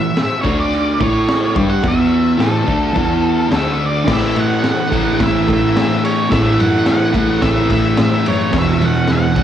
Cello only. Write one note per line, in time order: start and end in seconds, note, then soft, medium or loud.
0.00 0.17 A2 medium
0.21 0.45 A2 soft
0.46 0.97 D2 loud
1.00 1.52 A2 medium
1.55 1.82 G2 medium
1.83 2.36 E2 loud
2.40 2.66 A2 medium
2.68 2.94 D2 medium
2.95 3.48 E2 medium
3.52 4.04 D2 medium
4.08 4.25 A2 loud
4.36 4.53 A2 loud
4.63 4.98 A2 medium
5.20 5.37 A2 loud
5.48 5.65 A2 medium
5.76 6.10 A2 medium
6.33 6.49 A2 loud
6.59 6.76 F#2 medium
6.88 7.05 A2 medium
7.15 7.32 A3 medium
7.43 7.60 A2 medium
7.71 7.87 A2 medium
7.99 8.16 A2 loud
8.26 8.43 F#2 medium
8.53 8.70 E2 medium
8.81 8.98 E2 loud
9.10 9.43 E2 medium